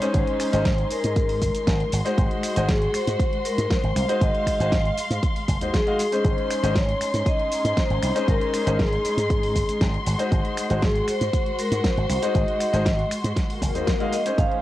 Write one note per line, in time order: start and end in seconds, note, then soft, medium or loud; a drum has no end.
0.00 6.21 G#3 medium
0.00 0.49 G#3 medium
0.00 1.89 C#4 medium
0.00 0.50 C#4 medium
0.00 1.89 D#4 medium
0.00 0.50 D#4 medium
0.00 0.50 C5 loud
0.00 0.15 C#5 loud
0.00 14.34 C6 medium
0.00 closed hi-hat medium
0.00 shaker soft
0.14 0.22 G#1 loud
0.14 0.93 C5 loud
0.14 kick loud
0.14 closed hi-hat medium
0.14 shaker soft
0.27 closed hi-hat soft
0.40 finger snap medium
0.40 open hi-hat loud
0.40 shaker medium
0.52 0.83 G#1 medium
0.52 0.64 G#3 loud
0.52 0.64 C#4 medium
0.52 0.64 D#4 medium
0.52 0.65 C5 loud
0.52 closed hi-hat medium
0.52 shaker soft
0.65 kick loud
0.65 snare loud
0.65 closed hi-hat medium
0.65 shaker soft
0.78 closed hi-hat soft
0.90 1.16 A#4 medium
0.90 muted slap bass stroke soft
0.90 open hi-hat loud
0.90 shaker medium
1.04 1.43 G#2 loud
1.04 closed hi-hat medium
1.04 shaker soft
1.16 1.89 A#4 medium
1.16 kick loud
1.16 closed hi-hat medium
1.16 shaker soft
1.29 open hi-hat medium
1.42 1.49 G#1 medium
1.42 kick medium
1.42 open hi-hat loud
1.42 shaker medium
1.54 closed hi-hat medium
1.54 shaker soft
1.67 1.83 G#1 medium
1.67 kick loud
1.67 snare loud
1.67 closed hi-hat medium
1.67 shaker soft
1.80 closed hi-hat soft
1.92 2.00 G#1 medium
1.92 3.93 F#4 medium
1.92 open hi-hat loud
1.92 shaker medium
2.05 2.53 G#3 medium
2.05 2.53 D#4 medium
2.05 2.53 F#4 medium
2.05 2.53 C5 loud
2.05 closed hi-hat medium
2.05 shaker soft
2.18 2.26 G#1 loud
2.18 kick loud
2.18 closed hi-hat medium
2.18 shaker soft
2.31 closed hi-hat soft
2.43 finger snap medium
2.43 open hi-hat loud
2.43 shaker medium
2.56 2.86 G#1 medium
2.56 2.68 G#3 medium
2.56 2.68 D#4 medium
2.56 2.68 F#4 medium
2.56 2.68 C5 loud
2.56 closed hi-hat medium
2.56 shaker soft
2.69 2.95 G#4 medium
2.69 kick loud
2.69 snare loud
2.69 closed hi-hat medium
2.69 shaker soft
2.82 closed hi-hat soft
2.94 3.47 C5 loud
2.94 finger snap medium
2.94 muted slap bass stroke soft
2.94 open hi-hat loud
2.94 shaker medium
3.07 3.15 G#2 loud
3.07 closed hi-hat medium
3.07 shaker soft
3.20 kick loud
3.20 closed hi-hat medium
3.20 shaker soft
3.33 closed hi-hat soft
3.45 3.71 A#4 medium
3.45 open hi-hat loud
3.45 shaker medium
3.58 3.66 G#2 medium
3.58 closed hi-hat medium
3.58 shaker soft
3.70 3.94 C5 loud
3.70 kick loud
3.70 snare loud
3.70 closed hi-hat soft
3.70 shaker soft
3.83 3.91 G#1 medium
3.83 closed hi-hat soft
3.96 4.04 C2 loud
3.96 4.20 C5 loud
3.96 6.23 F5 medium
3.96 finger snap medium
3.96 open hi-hat loud
3.96 shaker medium
4.08 4.56 G#3 medium
4.08 4.57 D#4 medium
4.08 4.57 F#4 medium
4.08 4.57 C5 loud
4.08 closed hi-hat medium
4.08 shaker soft
4.21 4.29 G#1 loud
4.21 4.94 D#5 loud
4.21 kick loud
4.21 closed hi-hat medium
4.21 shaker soft
4.35 closed hi-hat soft
4.47 finger snap medium
4.47 kick medium
4.47 open hi-hat loud
4.47 shaker medium
4.60 4.90 G#1 medium
4.60 4.71 G#3 medium
4.60 4.71 D#4 medium
4.60 4.71 F#4 medium
4.60 4.72 C5 loud
4.60 closed hi-hat medium
4.60 shaker soft
4.72 kick loud
4.72 snare loud
4.72 closed hi-hat soft
4.72 shaker soft
4.85 closed hi-hat soft
4.98 muted slap bass stroke soft
4.98 open hi-hat loud
4.98 shaker medium
5.11 5.18 G#2 loud
5.11 closed hi-hat soft
5.11 shaker soft
5.23 kick loud
5.23 closed hi-hat soft
5.23 shaker soft
5.36 open hi-hat medium
5.48 5.56 F#1 loud
5.48 kick medium
5.48 open hi-hat loud
5.48 shaker medium
5.61 5.69 D#2 medium
5.61 5.73 G#3 medium
5.61 5.73 D#4 medium
5.61 5.73 F#4 medium
5.61 5.74 C5 medium
5.61 closed hi-hat medium
5.61 shaker soft
5.74 6.22 G#4 medium
5.74 kick loud
5.74 snare loud
5.74 closed hi-hat soft
5.74 shaker soft
5.87 5.98 G#3 medium
5.87 5.99 D#4 medium
5.87 5.99 F#4 medium
5.87 5.99 F5 loud
5.87 closed hi-hat soft
5.99 open hi-hat loud
5.99 shaker medium
6.12 6.60 G#3 medium
6.12 6.60 C#4 medium
6.12 6.60 D#4 medium
6.12 6.60 C5 medium
6.12 closed hi-hat medium
6.12 shaker soft
6.24 6.33 G#1 loud
6.24 14.62 G#3 medium
6.24 10.02 C#4 medium
6.24 10.02 D#4 medium
6.24 6.73 C5 loud
6.24 kick loud
6.24 closed hi-hat medium
6.24 shaker soft
6.38 closed hi-hat soft
6.51 finger snap medium
6.51 open hi-hat loud
6.51 shaker medium
6.62 6.93 G#1 medium
6.62 6.74 G#3 medium
6.62 6.75 C#4 medium
6.62 6.75 D#4 medium
6.62 6.75 C5 loud
6.62 closed hi-hat soft
6.62 shaker soft
6.76 7.29 C#5 loud
6.76 kick loud
6.76 snare loud
6.76 closed hi-hat medium
6.76 shaker soft
6.89 closed hi-hat soft
7.01 finger snap medium
7.01 muted slap bass stroke soft
7.01 open hi-hat loud
7.01 shaker medium
7.14 7.21 G#2 medium
7.14 closed hi-hat soft
7.14 shaker soft
7.26 7.74 D#5 loud
7.26 kick loud
7.26 closed hi-hat soft
7.26 shaker soft
7.40 closed hi-hat soft
7.52 open hi-hat loud
7.52 shaker medium
7.65 7.72 G#2 medium
7.65 closed hi-hat soft
7.65 shaker soft
7.77 8.25 C5 loud
7.77 kick loud
7.77 snare loud
7.77 closed hi-hat soft
7.77 shaker soft
7.90 7.98 G#1 medium
7.90 closed hi-hat soft
8.03 8.11 C2 loud
8.03 finger snap medium
8.03 open hi-hat loud
8.03 shaker medium
8.15 8.63 G#3 medium
8.15 8.63 C#4 medium
8.15 8.63 D#4 medium
8.15 8.63 C5 loud
8.15 closed hi-hat medium
8.15 shaker soft
8.28 8.36 G#1 loud
8.28 8.81 A#4 loud
8.28 kick loud
8.28 closed hi-hat medium
8.28 shaker soft
8.41 closed hi-hat soft
8.54 finger snap medium
8.54 open hi-hat loud
8.54 shaker medium
8.66 8.96 G#1 medium
8.66 8.78 G#3 medium
8.66 8.78 C#4 medium
8.66 8.78 D#4 medium
8.66 8.78 C5 loud
8.66 closed hi-hat medium
8.66 shaker soft
8.79 9.77 G#4 medium
8.79 kick loud
8.79 snare loud
8.79 closed hi-hat medium
8.79 shaker soft
8.92 closed hi-hat soft
9.04 muted slap bass stroke soft
9.04 open hi-hat loud
9.04 shaker medium
9.17 9.57 G#2 loud
9.17 closed hi-hat medium
9.17 shaker soft
9.30 kick loud
9.30 closed hi-hat medium
9.30 shaker soft
9.43 open hi-hat medium
9.55 9.63 G#1 medium
9.55 kick medium
9.55 open hi-hat loud
9.55 shaker medium
9.69 closed hi-hat medium
9.69 shaker soft
9.81 9.96 G#1 medium
9.81 kick loud
9.81 snare loud
9.81 closed hi-hat medium
9.81 shaker soft
9.94 closed hi-hat soft
10.06 10.14 G#1 medium
10.06 14.34 F#4 medium
10.06 open hi-hat loud
10.06 shaker medium
10.18 10.66 G#3 medium
10.18 10.67 D#4 medium
10.18 10.67 F#4 medium
10.18 10.67 C5 loud
10.18 closed hi-hat medium
10.18 shaker soft
10.32 10.39 G#1 loud
10.32 kick loud
10.32 closed hi-hat medium
10.32 shaker soft
10.45 closed hi-hat soft
10.57 finger snap medium
10.57 open hi-hat loud
10.57 shaker medium
10.69 11.00 G#1 medium
10.69 10.81 G#3 medium
10.69 10.81 D#4 medium
10.69 10.82 F#4 medium
10.69 10.82 C5 loud
10.69 closed hi-hat medium
10.69 shaker soft
10.82 11.09 G#4 medium
10.82 kick loud
10.82 snare loud
10.82 closed hi-hat medium
10.82 shaker soft
10.95 closed hi-hat soft
11.08 11.56 C5 loud
11.08 finger snap medium
11.08 muted slap bass stroke soft
11.08 open hi-hat loud
11.08 shaker medium
11.21 11.28 G#2 loud
11.21 closed hi-hat medium
11.21 shaker soft
11.33 kick loud
11.33 closed hi-hat medium
11.33 shaker soft
11.46 closed hi-hat soft
11.59 11.85 A#4 medium
11.59 open hi-hat loud
11.59 shaker medium
11.71 11.79 G#2 medium
11.71 closed hi-hat medium
11.71 shaker soft
11.84 12.08 C5 loud
11.84 kick loud
11.84 snare loud
11.84 closed hi-hat medium
11.84 shaker soft
11.97 12.05 G#1 medium
11.97 closed hi-hat soft
12.09 12.17 C2 loud
12.09 12.36 C5 loud
12.09 finger snap medium
12.09 open hi-hat loud
12.09 shaker medium
12.22 12.70 G#3 medium
12.22 12.70 D#4 medium
12.22 12.70 F#4 medium
12.22 12.70 C5 loud
12.22 closed hi-hat medium
12.22 shaker soft
12.35 12.43 G#1 loud
12.35 13.07 D#5 loud
12.35 kick loud
12.35 closed hi-hat medium
12.35 shaker soft
12.48 closed hi-hat soft
12.60 finger snap medium
12.60 open hi-hat loud
12.60 shaker medium
12.73 13.03 G#1 medium
12.73 12.85 G#3 medium
12.73 12.85 D#4 medium
12.73 12.85 F#4 medium
12.73 12.85 C5 loud
12.73 closed hi-hat medium
12.73 shaker soft
12.86 kick loud
12.86 snare loud
12.86 closed hi-hat medium
12.86 shaker soft
12.99 closed hi-hat soft
13.11 finger snap medium
13.11 muted slap bass stroke soft
13.11 open hi-hat loud
13.11 shaker medium
13.24 13.32 G#2 loud
13.24 closed hi-hat medium
13.24 shaker soft
13.36 kick loud
13.36 snare medium
13.36 closed hi-hat medium
13.36 swell medium
13.36 shaker soft
13.50 open hi-hat medium
13.62 13.70 F#1 loud
13.62 kick medium
13.62 open hi-hat loud
13.62 shaker medium
13.74 13.83 D#2 medium
13.74 13.86 G#3 medium
13.74 13.87 D#4 medium
13.74 13.87 F#4 medium
13.74 13.87 C5 medium
13.74 closed hi-hat medium
13.74 shaker soft
13.87 kick loud
13.87 snare loud
13.87 closed hi-hat medium
13.87 shaker soft
14.00 14.12 G#3 medium
14.00 14.12 D#4 medium
14.00 14.12 F#4 medium
14.00 14.12 F5 loud
14.00 closed hi-hat soft
14.13 14.37 D#5 loud
14.13 open hi-hat loud
14.13 shaker medium
14.25 14.62 G#3 medium
14.25 14.62 C#4 medium
14.25 14.62 D#4 medium
14.25 14.62 C5 medium
14.25 closed hi-hat medium
14.25 shaker soft
14.38 14.46 G#1 loud
14.38 14.62 C#4 medium
14.38 14.62 D#4 medium
14.38 14.62 C5 medium
14.38 14.62 F5 loud
14.38 kick loud
14.38 closed hi-hat medium
14.38 shaker soft
14.52 closed hi-hat soft